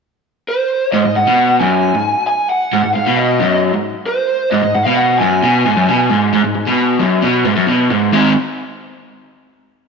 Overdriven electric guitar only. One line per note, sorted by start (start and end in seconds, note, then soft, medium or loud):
0.93 1.04 G#2 loud
1.05 1.15 G#2 medium
1.16 1.27 G#2 medium
1.27 1.60 B2 loud
1.61 1.94 F#2 medium
1.95 2.13 G#2 medium
2.73 2.83 G#2 loud
2.84 2.95 G#2 medium
2.96 3.07 G#2 medium
3.06 3.39 B2 loud
3.40 3.73 F#2 loud
3.74 3.92 G#2 medium
4.52 4.62 G#2 loud
4.63 4.74 G#2 medium
4.75 4.86 G#2 medium
4.86 5.19 B2 loud
5.21 5.42 F#2 loud
5.42 5.64 B2 loud
5.65 5.76 G#2 loud
5.77 5.87 F#2 medium
5.89 6.10 B2 loud
6.10 6.32 G#2 medium
6.33 6.43 G#2 loud
6.44 6.54 G#2 medium
6.55 6.67 G#2 medium
6.67 7.00 B2 loud
7.00 7.22 F#2 loud
7.22 7.45 B2 loud
7.45 7.56 G#2 loud
7.56 7.67 F#2 loud
7.67 7.90 B2 medium
7.90 8.12 G#2 medium
8.13 8.31 G#2 medium
8.13 8.31 D#3 medium
8.13 8.32 G#3 loud
8.13 8.32 C4 loud
8.13 8.32 D#4 loud
8.13 8.32 G#4 loud